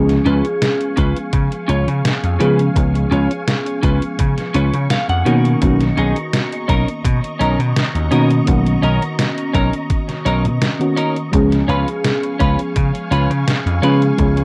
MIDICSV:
0, 0, Header, 1, 6, 480
1, 0, Start_track
1, 0, Tempo, 714286
1, 1855, Time_signature, 4, 2, 24, 8
1, 9704, End_track
2, 0, Start_track
2, 0, Title_t, "String machine"
2, 0, Program_c, 0, 50
2, 0, Note_on_c, 0, 77, 74
2, 0, Note_on_c, 0, 80, 76
2, 0, Note_on_c, 0, 85, 89
2, 3509, Note_off_c, 0, 77, 0
2, 3509, Note_off_c, 0, 80, 0
2, 3534, Note_on_c, 0, 75, 74
2, 3535, Note_on_c, 0, 82, 75
2, 7588, Note_off_c, 0, 75, 0
2, 7588, Note_off_c, 0, 82, 0
2, 7589, Note_off_c, 0, 85, 0
2, 7615, Note_on_c, 0, 80, 77
2, 7616, Note_on_c, 0, 77, 76
2, 7617, Note_on_c, 0, 85, 98
2, 9704, Note_off_c, 0, 77, 0
2, 9704, Note_off_c, 0, 80, 0
2, 9704, Note_off_c, 0, 85, 0
2, 9704, End_track
3, 0, Start_track
3, 0, Title_t, "Clean electric guitar"
3, 0, Program_c, 1, 27
3, 171, Note_on_c, 1, 61, 80
3, 176, Note_on_c, 1, 65, 75
3, 182, Note_on_c, 1, 71, 92
3, 300, Note_off_c, 1, 61, 0
3, 302, Note_off_c, 1, 65, 0
3, 305, Note_off_c, 1, 71, 0
3, 650, Note_on_c, 1, 61, 86
3, 656, Note_on_c, 1, 65, 76
3, 661, Note_on_c, 1, 71, 94
3, 779, Note_off_c, 1, 61, 0
3, 782, Note_off_c, 1, 65, 0
3, 785, Note_off_c, 1, 71, 0
3, 1128, Note_on_c, 1, 61, 88
3, 1134, Note_on_c, 1, 65, 77
3, 1140, Note_on_c, 1, 73, 94
3, 1258, Note_off_c, 1, 61, 0
3, 1261, Note_off_c, 1, 65, 0
3, 1264, Note_off_c, 1, 73, 0
3, 1612, Note_on_c, 1, 61, 81
3, 1617, Note_on_c, 1, 65, 76
3, 1623, Note_on_c, 1, 71, 86
3, 1740, Note_off_c, 1, 61, 0
3, 1743, Note_off_c, 1, 65, 0
3, 1746, Note_off_c, 1, 71, 0
3, 2091, Note_on_c, 1, 61, 85
3, 2096, Note_on_c, 1, 65, 79
3, 2102, Note_on_c, 1, 73, 89
3, 2220, Note_off_c, 1, 61, 0
3, 2222, Note_off_c, 1, 65, 0
3, 2226, Note_off_c, 1, 73, 0
3, 2571, Note_on_c, 1, 61, 85
3, 2578, Note_on_c, 1, 65, 81
3, 2582, Note_on_c, 1, 71, 95
3, 2700, Note_off_c, 1, 61, 0
3, 2703, Note_off_c, 1, 65, 0
3, 2706, Note_off_c, 1, 71, 0
3, 3053, Note_on_c, 1, 61, 86
3, 3056, Note_on_c, 1, 65, 76
3, 3060, Note_on_c, 1, 73, 67
3, 3065, Note_on_c, 1, 71, 90
3, 3181, Note_off_c, 1, 61, 0
3, 3183, Note_off_c, 1, 65, 0
3, 3187, Note_off_c, 1, 71, 0
3, 3280, Note_off_c, 1, 73, 0
3, 3298, Note_on_c, 1, 77, 72
3, 3415, Note_off_c, 1, 77, 0
3, 3424, Note_on_c, 1, 78, 75
3, 3530, Note_on_c, 1, 61, 89
3, 3537, Note_on_c, 1, 63, 83
3, 3542, Note_on_c, 1, 70, 100
3, 3751, Note_off_c, 1, 78, 0
3, 3922, Note_off_c, 1, 61, 0
3, 3926, Note_off_c, 1, 63, 0
3, 3928, Note_off_c, 1, 70, 0
3, 4012, Note_on_c, 1, 61, 85
3, 4016, Note_on_c, 1, 63, 77
3, 4023, Note_on_c, 1, 68, 96
3, 4140, Note_off_c, 1, 61, 0
3, 4142, Note_off_c, 1, 63, 0
3, 4146, Note_off_c, 1, 68, 0
3, 4489, Note_on_c, 1, 61, 84
3, 4495, Note_on_c, 1, 63, 78
3, 4500, Note_on_c, 1, 70, 96
3, 4619, Note_off_c, 1, 61, 0
3, 4622, Note_off_c, 1, 63, 0
3, 4625, Note_off_c, 1, 70, 0
3, 4968, Note_on_c, 1, 61, 86
3, 4975, Note_on_c, 1, 63, 81
3, 4980, Note_on_c, 1, 70, 92
3, 5098, Note_off_c, 1, 61, 0
3, 5102, Note_off_c, 1, 63, 0
3, 5104, Note_off_c, 1, 70, 0
3, 5449, Note_on_c, 1, 61, 79
3, 5455, Note_on_c, 1, 63, 78
3, 5460, Note_on_c, 1, 70, 89
3, 5579, Note_off_c, 1, 61, 0
3, 5582, Note_off_c, 1, 63, 0
3, 5584, Note_off_c, 1, 70, 0
3, 5929, Note_on_c, 1, 61, 83
3, 5935, Note_on_c, 1, 63, 78
3, 5941, Note_on_c, 1, 70, 94
3, 6059, Note_off_c, 1, 61, 0
3, 6062, Note_off_c, 1, 63, 0
3, 6065, Note_off_c, 1, 70, 0
3, 6407, Note_on_c, 1, 61, 81
3, 6413, Note_on_c, 1, 63, 81
3, 6419, Note_on_c, 1, 70, 93
3, 6538, Note_off_c, 1, 61, 0
3, 6541, Note_off_c, 1, 63, 0
3, 6544, Note_off_c, 1, 70, 0
3, 6889, Note_on_c, 1, 61, 86
3, 6894, Note_on_c, 1, 63, 79
3, 6899, Note_on_c, 1, 70, 93
3, 7019, Note_off_c, 1, 61, 0
3, 7022, Note_off_c, 1, 63, 0
3, 7024, Note_off_c, 1, 70, 0
3, 7368, Note_on_c, 1, 61, 86
3, 7374, Note_on_c, 1, 63, 77
3, 7379, Note_on_c, 1, 70, 88
3, 7499, Note_off_c, 1, 61, 0
3, 7501, Note_off_c, 1, 63, 0
3, 7504, Note_off_c, 1, 70, 0
3, 7850, Note_on_c, 1, 61, 87
3, 7855, Note_on_c, 1, 65, 77
3, 7860, Note_on_c, 1, 71, 93
3, 7979, Note_off_c, 1, 61, 0
3, 7982, Note_off_c, 1, 65, 0
3, 7984, Note_off_c, 1, 71, 0
3, 8329, Note_on_c, 1, 61, 86
3, 8334, Note_on_c, 1, 65, 74
3, 8340, Note_on_c, 1, 71, 95
3, 8459, Note_off_c, 1, 61, 0
3, 8461, Note_off_c, 1, 65, 0
3, 8465, Note_off_c, 1, 71, 0
3, 8810, Note_on_c, 1, 61, 87
3, 8816, Note_on_c, 1, 65, 79
3, 8822, Note_on_c, 1, 71, 100
3, 8939, Note_off_c, 1, 61, 0
3, 8942, Note_off_c, 1, 65, 0
3, 8945, Note_off_c, 1, 71, 0
3, 9288, Note_on_c, 1, 61, 83
3, 9294, Note_on_c, 1, 65, 74
3, 9300, Note_on_c, 1, 71, 90
3, 9418, Note_off_c, 1, 61, 0
3, 9421, Note_off_c, 1, 65, 0
3, 9424, Note_off_c, 1, 71, 0
3, 9704, End_track
4, 0, Start_track
4, 0, Title_t, "FM electric piano"
4, 0, Program_c, 2, 5
4, 0, Note_on_c, 2, 53, 78
4, 0, Note_on_c, 2, 56, 73
4, 0, Note_on_c, 2, 59, 75
4, 0, Note_on_c, 2, 61, 75
4, 0, Note_on_c, 2, 68, 94
4, 77, Control_c, 2, 64, 127
4, 1582, Note_off_c, 2, 53, 0
4, 1584, Note_off_c, 2, 56, 0
4, 1587, Note_off_c, 2, 59, 0
4, 1589, Note_off_c, 2, 61, 0
4, 1592, Note_off_c, 2, 68, 0
4, 1608, Note_on_c, 2, 53, 90
4, 1612, Note_on_c, 2, 56, 82
4, 1615, Note_on_c, 2, 59, 78
4, 1615, Note_on_c, 2, 61, 81
4, 1619, Note_on_c, 2, 68, 91
4, 1824, Note_off_c, 2, 53, 0
4, 1826, Note_off_c, 2, 56, 0
4, 1828, Note_off_c, 2, 59, 0
4, 1828, Note_off_c, 2, 61, 0
4, 1830, Note_off_c, 2, 68, 0
4, 1844, Note_on_c, 2, 53, 81
4, 1849, Note_on_c, 2, 56, 74
4, 1853, Note_on_c, 2, 59, 76
4, 1860, Note_on_c, 2, 61, 71
4, 1864, Note_on_c, 2, 68, 88
4, 3502, Note_off_c, 2, 53, 0
4, 3505, Note_off_c, 2, 56, 0
4, 3507, Note_off_c, 2, 59, 0
4, 3510, Note_off_c, 2, 61, 0
4, 3512, Note_off_c, 2, 68, 0
4, 3529, Note_on_c, 2, 51, 88
4, 3532, Note_on_c, 2, 58, 76
4, 3534, Note_on_c, 2, 59, 78
4, 3537, Note_on_c, 2, 61, 77
4, 3538, Note_on_c, 2, 66, 98
4, 3544, Control_c, 2, 64, 0
4, 3680, Control_c, 2, 64, 127
4, 3745, Note_off_c, 2, 51, 0
4, 3746, Note_off_c, 2, 58, 0
4, 3747, Note_off_c, 2, 59, 0
4, 3749, Note_off_c, 2, 61, 0
4, 3749, Note_off_c, 2, 66, 0
4, 3768, Note_on_c, 2, 51, 80
4, 3772, Note_on_c, 2, 58, 75
4, 3778, Note_on_c, 2, 59, 75
4, 3783, Note_on_c, 2, 61, 74
4, 3789, Note_on_c, 2, 66, 92
4, 5424, Note_off_c, 2, 51, 0
4, 5426, Note_off_c, 2, 58, 0
4, 5429, Note_off_c, 2, 59, 0
4, 5432, Note_off_c, 2, 61, 0
4, 5435, Note_off_c, 2, 66, 0
4, 5448, Note_on_c, 2, 51, 85
4, 5451, Note_on_c, 2, 58, 83
4, 5454, Note_on_c, 2, 59, 79
4, 5457, Note_on_c, 2, 61, 80
4, 5458, Note_on_c, 2, 66, 96
4, 5664, Note_off_c, 2, 51, 0
4, 5666, Note_off_c, 2, 58, 0
4, 5667, Note_off_c, 2, 59, 0
4, 5669, Note_off_c, 2, 61, 0
4, 5669, Note_off_c, 2, 66, 0
4, 5683, Note_on_c, 2, 51, 86
4, 5687, Note_on_c, 2, 58, 75
4, 5693, Note_on_c, 2, 59, 73
4, 5697, Note_on_c, 2, 61, 78
4, 5704, Note_on_c, 2, 66, 93
4, 7230, Note_off_c, 2, 51, 0
4, 7233, Note_off_c, 2, 58, 0
4, 7236, Note_off_c, 2, 59, 0
4, 7238, Note_off_c, 2, 61, 0
4, 7241, Note_off_c, 2, 66, 0
4, 7253, Note_on_c, 2, 51, 73
4, 7255, Note_on_c, 2, 58, 66
4, 7259, Note_on_c, 2, 59, 65
4, 7263, Note_on_c, 2, 61, 69
4, 7263, Note_on_c, 2, 66, 78
4, 7365, Note_off_c, 2, 51, 0
4, 7366, Note_off_c, 2, 58, 0
4, 7367, Note_off_c, 2, 59, 0
4, 7369, Note_off_c, 2, 61, 0
4, 7369, Note_off_c, 2, 66, 0
4, 7604, Note_on_c, 2, 53, 83
4, 7610, Note_on_c, 2, 56, 73
4, 7615, Note_on_c, 2, 59, 75
4, 7620, Note_on_c, 2, 61, 78
4, 7624, Control_c, 2, 64, 0
4, 7625, Note_on_c, 2, 68, 96
4, 7734, Control_c, 2, 64, 127
4, 9262, Note_off_c, 2, 53, 0
4, 9265, Note_off_c, 2, 56, 0
4, 9268, Note_off_c, 2, 59, 0
4, 9270, Note_off_c, 2, 61, 0
4, 9273, Note_off_c, 2, 68, 0
4, 9289, Note_on_c, 2, 53, 82
4, 9290, Note_on_c, 2, 56, 78
4, 9294, Note_on_c, 2, 59, 80
4, 9297, Note_on_c, 2, 61, 82
4, 9298, Note_on_c, 2, 68, 95
4, 9505, Note_off_c, 2, 53, 0
4, 9505, Note_off_c, 2, 56, 0
4, 9507, Note_off_c, 2, 59, 0
4, 9509, Note_off_c, 2, 61, 0
4, 9509, Note_off_c, 2, 68, 0
4, 9525, Note_on_c, 2, 53, 85
4, 9530, Note_on_c, 2, 56, 77
4, 9535, Note_on_c, 2, 59, 77
4, 9540, Note_on_c, 2, 61, 74
4, 9544, Note_on_c, 2, 68, 94
4, 9704, Note_off_c, 2, 53, 0
4, 9704, Note_off_c, 2, 56, 0
4, 9704, Note_off_c, 2, 59, 0
4, 9704, Note_off_c, 2, 61, 0
4, 9704, Note_off_c, 2, 68, 0
4, 9704, End_track
5, 0, Start_track
5, 0, Title_t, "Slap bass"
5, 0, Program_c, 3, 36
5, 0, Note_on_c, 3, 37, 96
5, 123, Note_off_c, 3, 37, 0
5, 174, Note_on_c, 3, 37, 96
5, 272, Note_off_c, 3, 37, 0
5, 654, Note_on_c, 3, 37, 89
5, 752, Note_off_c, 3, 37, 0
5, 893, Note_on_c, 3, 49, 93
5, 992, Note_off_c, 3, 49, 0
5, 1135, Note_on_c, 3, 37, 105
5, 1233, Note_off_c, 3, 37, 0
5, 1260, Note_on_c, 3, 49, 96
5, 1348, Note_off_c, 3, 49, 0
5, 1503, Note_on_c, 3, 41, 75
5, 1589, Note_off_c, 3, 41, 0
5, 1614, Note_on_c, 3, 49, 101
5, 1803, Note_off_c, 3, 49, 0
5, 1854, Note_on_c, 3, 37, 94
5, 2043, Note_off_c, 3, 37, 0
5, 2093, Note_on_c, 3, 37, 94
5, 2192, Note_off_c, 3, 37, 0
5, 2575, Note_on_c, 3, 37, 93
5, 2673, Note_off_c, 3, 37, 0
5, 2816, Note_on_c, 3, 49, 93
5, 2913, Note_off_c, 3, 49, 0
5, 3054, Note_on_c, 3, 37, 97
5, 3152, Note_off_c, 3, 37, 0
5, 3184, Note_on_c, 3, 49, 93
5, 3270, Note_off_c, 3, 49, 0
5, 3420, Note_on_c, 3, 41, 79
5, 3508, Note_off_c, 3, 41, 0
5, 3534, Note_on_c, 3, 47, 95
5, 3722, Note_off_c, 3, 47, 0
5, 3775, Note_on_c, 3, 35, 101
5, 3963, Note_off_c, 3, 35, 0
5, 4017, Note_on_c, 3, 35, 92
5, 4114, Note_off_c, 3, 35, 0
5, 4495, Note_on_c, 3, 35, 92
5, 4593, Note_off_c, 3, 35, 0
5, 4734, Note_on_c, 3, 47, 96
5, 4832, Note_off_c, 3, 47, 0
5, 4975, Note_on_c, 3, 35, 101
5, 5073, Note_off_c, 3, 35, 0
5, 5101, Note_on_c, 3, 47, 94
5, 5189, Note_off_c, 3, 47, 0
5, 5341, Note_on_c, 3, 39, 78
5, 5428, Note_off_c, 3, 39, 0
5, 5453, Note_on_c, 3, 47, 97
5, 5642, Note_off_c, 3, 47, 0
5, 5694, Note_on_c, 3, 35, 96
5, 5882, Note_off_c, 3, 35, 0
5, 5932, Note_on_c, 3, 35, 92
5, 6031, Note_off_c, 3, 35, 0
5, 6414, Note_on_c, 3, 35, 93
5, 6512, Note_off_c, 3, 35, 0
5, 6893, Note_on_c, 3, 35, 85
5, 7020, Note_on_c, 3, 47, 85
5, 7030, Note_off_c, 3, 35, 0
5, 7108, Note_off_c, 3, 47, 0
5, 7614, Note_on_c, 3, 37, 99
5, 7803, Note_off_c, 3, 37, 0
5, 7852, Note_on_c, 3, 37, 91
5, 7951, Note_off_c, 3, 37, 0
5, 8333, Note_on_c, 3, 37, 96
5, 8432, Note_off_c, 3, 37, 0
5, 8574, Note_on_c, 3, 49, 98
5, 8672, Note_off_c, 3, 49, 0
5, 8810, Note_on_c, 3, 37, 98
5, 8910, Note_off_c, 3, 37, 0
5, 8936, Note_on_c, 3, 49, 93
5, 9026, Note_off_c, 3, 49, 0
5, 9178, Note_on_c, 3, 41, 83
5, 9267, Note_off_c, 3, 41, 0
5, 9291, Note_on_c, 3, 49, 102
5, 9481, Note_off_c, 3, 49, 0
5, 9532, Note_on_c, 3, 37, 98
5, 9704, Note_off_c, 3, 37, 0
5, 9704, End_track
6, 0, Start_track
6, 0, Title_t, "Drums"
6, 62, Note_on_c, 9, 38, 34
6, 62, Note_on_c, 9, 42, 38
6, 130, Note_off_c, 9, 38, 0
6, 130, Note_off_c, 9, 42, 0
6, 174, Note_on_c, 9, 42, 35
6, 241, Note_off_c, 9, 42, 0
6, 301, Note_on_c, 9, 42, 38
6, 368, Note_off_c, 9, 42, 0
6, 415, Note_on_c, 9, 38, 120
6, 415, Note_on_c, 9, 42, 93
6, 483, Note_off_c, 9, 38, 0
6, 483, Note_off_c, 9, 42, 0
6, 542, Note_on_c, 9, 42, 42
6, 609, Note_off_c, 9, 42, 0
6, 653, Note_on_c, 9, 42, 68
6, 654, Note_on_c, 9, 36, 98
6, 720, Note_off_c, 9, 42, 0
6, 722, Note_off_c, 9, 36, 0
6, 783, Note_on_c, 9, 42, 39
6, 850, Note_off_c, 9, 42, 0
6, 892, Note_on_c, 9, 42, 90
6, 894, Note_on_c, 9, 36, 123
6, 960, Note_off_c, 9, 42, 0
6, 961, Note_off_c, 9, 36, 0
6, 1021, Note_on_c, 9, 42, 41
6, 1088, Note_off_c, 9, 42, 0
6, 1135, Note_on_c, 9, 42, 64
6, 1203, Note_off_c, 9, 42, 0
6, 1263, Note_on_c, 9, 42, 40
6, 1330, Note_off_c, 9, 42, 0
6, 1378, Note_on_c, 9, 38, 123
6, 1378, Note_on_c, 9, 42, 92
6, 1445, Note_off_c, 9, 38, 0
6, 1445, Note_off_c, 9, 42, 0
6, 1503, Note_on_c, 9, 42, 39
6, 1570, Note_off_c, 9, 42, 0
6, 1616, Note_on_c, 9, 42, 66
6, 1683, Note_off_c, 9, 42, 0
6, 1742, Note_on_c, 9, 42, 41
6, 1809, Note_off_c, 9, 42, 0
6, 1854, Note_on_c, 9, 36, 119
6, 1857, Note_on_c, 9, 42, 90
6, 1921, Note_off_c, 9, 36, 0
6, 1924, Note_off_c, 9, 42, 0
6, 1985, Note_on_c, 9, 42, 39
6, 2052, Note_off_c, 9, 42, 0
6, 2098, Note_on_c, 9, 42, 35
6, 2165, Note_off_c, 9, 42, 0
6, 2224, Note_on_c, 9, 42, 43
6, 2291, Note_off_c, 9, 42, 0
6, 2336, Note_on_c, 9, 38, 119
6, 2336, Note_on_c, 9, 42, 92
6, 2403, Note_off_c, 9, 38, 0
6, 2403, Note_off_c, 9, 42, 0
6, 2462, Note_on_c, 9, 42, 43
6, 2529, Note_off_c, 9, 42, 0
6, 2575, Note_on_c, 9, 36, 100
6, 2575, Note_on_c, 9, 42, 68
6, 2642, Note_off_c, 9, 36, 0
6, 2642, Note_off_c, 9, 42, 0
6, 2702, Note_on_c, 9, 42, 39
6, 2770, Note_off_c, 9, 42, 0
6, 2814, Note_on_c, 9, 42, 92
6, 2815, Note_on_c, 9, 36, 127
6, 2881, Note_off_c, 9, 42, 0
6, 2882, Note_off_c, 9, 36, 0
6, 2941, Note_on_c, 9, 38, 39
6, 2941, Note_on_c, 9, 42, 40
6, 3008, Note_off_c, 9, 38, 0
6, 3008, Note_off_c, 9, 42, 0
6, 3053, Note_on_c, 9, 42, 65
6, 3120, Note_off_c, 9, 42, 0
6, 3182, Note_on_c, 9, 42, 42
6, 3249, Note_off_c, 9, 42, 0
6, 3294, Note_on_c, 9, 38, 120
6, 3294, Note_on_c, 9, 42, 98
6, 3361, Note_off_c, 9, 38, 0
6, 3361, Note_off_c, 9, 42, 0
6, 3422, Note_on_c, 9, 42, 38
6, 3490, Note_off_c, 9, 42, 0
6, 3536, Note_on_c, 9, 42, 67
6, 3603, Note_off_c, 9, 42, 0
6, 3664, Note_on_c, 9, 42, 38
6, 3731, Note_off_c, 9, 42, 0
6, 3775, Note_on_c, 9, 42, 90
6, 3776, Note_on_c, 9, 36, 122
6, 3842, Note_off_c, 9, 42, 0
6, 3843, Note_off_c, 9, 36, 0
6, 3901, Note_on_c, 9, 38, 36
6, 3901, Note_on_c, 9, 42, 39
6, 3968, Note_off_c, 9, 38, 0
6, 3968, Note_off_c, 9, 42, 0
6, 4015, Note_on_c, 9, 42, 35
6, 4082, Note_off_c, 9, 42, 0
6, 4141, Note_on_c, 9, 42, 41
6, 4208, Note_off_c, 9, 42, 0
6, 4256, Note_on_c, 9, 38, 121
6, 4256, Note_on_c, 9, 42, 89
6, 4323, Note_off_c, 9, 38, 0
6, 4323, Note_off_c, 9, 42, 0
6, 4384, Note_on_c, 9, 42, 41
6, 4452, Note_off_c, 9, 42, 0
6, 4495, Note_on_c, 9, 36, 108
6, 4496, Note_on_c, 9, 42, 62
6, 4562, Note_off_c, 9, 36, 0
6, 4563, Note_off_c, 9, 42, 0
6, 4626, Note_on_c, 9, 42, 39
6, 4693, Note_off_c, 9, 42, 0
6, 4735, Note_on_c, 9, 36, 124
6, 4738, Note_on_c, 9, 42, 88
6, 4802, Note_off_c, 9, 36, 0
6, 4805, Note_off_c, 9, 42, 0
6, 4866, Note_on_c, 9, 42, 40
6, 4933, Note_off_c, 9, 42, 0
6, 4978, Note_on_c, 9, 42, 62
6, 5045, Note_off_c, 9, 42, 0
6, 5107, Note_on_c, 9, 42, 40
6, 5174, Note_off_c, 9, 42, 0
6, 5218, Note_on_c, 9, 38, 124
6, 5218, Note_on_c, 9, 42, 96
6, 5285, Note_off_c, 9, 38, 0
6, 5285, Note_off_c, 9, 42, 0
6, 5345, Note_on_c, 9, 42, 38
6, 5412, Note_off_c, 9, 42, 0
6, 5454, Note_on_c, 9, 42, 67
6, 5521, Note_off_c, 9, 42, 0
6, 5581, Note_on_c, 9, 42, 40
6, 5648, Note_off_c, 9, 42, 0
6, 5693, Note_on_c, 9, 42, 83
6, 5694, Note_on_c, 9, 36, 126
6, 5760, Note_off_c, 9, 42, 0
6, 5762, Note_off_c, 9, 36, 0
6, 5822, Note_on_c, 9, 42, 39
6, 5890, Note_off_c, 9, 42, 0
6, 5935, Note_on_c, 9, 42, 34
6, 6002, Note_off_c, 9, 42, 0
6, 6064, Note_on_c, 9, 42, 38
6, 6131, Note_off_c, 9, 42, 0
6, 6174, Note_on_c, 9, 38, 121
6, 6174, Note_on_c, 9, 42, 90
6, 6242, Note_off_c, 9, 38, 0
6, 6242, Note_off_c, 9, 42, 0
6, 6302, Note_on_c, 9, 42, 40
6, 6369, Note_off_c, 9, 42, 0
6, 6414, Note_on_c, 9, 36, 101
6, 6415, Note_on_c, 9, 42, 62
6, 6481, Note_off_c, 9, 36, 0
6, 6482, Note_off_c, 9, 42, 0
6, 6541, Note_on_c, 9, 42, 38
6, 6608, Note_off_c, 9, 42, 0
6, 6652, Note_on_c, 9, 42, 87
6, 6654, Note_on_c, 9, 36, 125
6, 6720, Note_off_c, 9, 42, 0
6, 6721, Note_off_c, 9, 36, 0
6, 6779, Note_on_c, 9, 38, 38
6, 6779, Note_on_c, 9, 42, 38
6, 6846, Note_off_c, 9, 38, 0
6, 6846, Note_off_c, 9, 42, 0
6, 6894, Note_on_c, 9, 42, 63
6, 6962, Note_off_c, 9, 42, 0
6, 7023, Note_on_c, 9, 42, 38
6, 7090, Note_off_c, 9, 42, 0
6, 7135, Note_on_c, 9, 38, 121
6, 7135, Note_on_c, 9, 42, 92
6, 7202, Note_off_c, 9, 38, 0
6, 7202, Note_off_c, 9, 42, 0
6, 7263, Note_on_c, 9, 42, 36
6, 7331, Note_off_c, 9, 42, 0
6, 7374, Note_on_c, 9, 42, 63
6, 7442, Note_off_c, 9, 42, 0
6, 7503, Note_on_c, 9, 42, 37
6, 7570, Note_off_c, 9, 42, 0
6, 7614, Note_on_c, 9, 36, 118
6, 7616, Note_on_c, 9, 42, 80
6, 7681, Note_off_c, 9, 36, 0
6, 7683, Note_off_c, 9, 42, 0
6, 7743, Note_on_c, 9, 38, 36
6, 7743, Note_on_c, 9, 42, 36
6, 7810, Note_off_c, 9, 38, 0
6, 7810, Note_off_c, 9, 42, 0
6, 7858, Note_on_c, 9, 42, 32
6, 7925, Note_off_c, 9, 42, 0
6, 7983, Note_on_c, 9, 42, 36
6, 8051, Note_off_c, 9, 42, 0
6, 8094, Note_on_c, 9, 38, 112
6, 8094, Note_on_c, 9, 42, 85
6, 8161, Note_off_c, 9, 38, 0
6, 8161, Note_off_c, 9, 42, 0
6, 8221, Note_on_c, 9, 42, 38
6, 8288, Note_off_c, 9, 42, 0
6, 8334, Note_on_c, 9, 36, 104
6, 8334, Note_on_c, 9, 42, 60
6, 8401, Note_off_c, 9, 36, 0
6, 8402, Note_off_c, 9, 42, 0
6, 8461, Note_on_c, 9, 42, 36
6, 8529, Note_off_c, 9, 42, 0
6, 8574, Note_on_c, 9, 36, 120
6, 8574, Note_on_c, 9, 42, 80
6, 8641, Note_off_c, 9, 36, 0
6, 8641, Note_off_c, 9, 42, 0
6, 8701, Note_on_c, 9, 42, 38
6, 8768, Note_off_c, 9, 42, 0
6, 8815, Note_on_c, 9, 42, 61
6, 8882, Note_off_c, 9, 42, 0
6, 8943, Note_on_c, 9, 42, 39
6, 9011, Note_off_c, 9, 42, 0
6, 9056, Note_on_c, 9, 38, 116
6, 9056, Note_on_c, 9, 42, 88
6, 9123, Note_off_c, 9, 38, 0
6, 9123, Note_off_c, 9, 42, 0
6, 9185, Note_on_c, 9, 42, 35
6, 9252, Note_off_c, 9, 42, 0
6, 9296, Note_on_c, 9, 42, 64
6, 9363, Note_off_c, 9, 42, 0
6, 9422, Note_on_c, 9, 42, 37
6, 9489, Note_off_c, 9, 42, 0
6, 9532, Note_on_c, 9, 42, 85
6, 9534, Note_on_c, 9, 36, 109
6, 9599, Note_off_c, 9, 42, 0
6, 9601, Note_off_c, 9, 36, 0
6, 9658, Note_on_c, 9, 42, 37
6, 9704, Note_off_c, 9, 42, 0
6, 9704, End_track
0, 0, End_of_file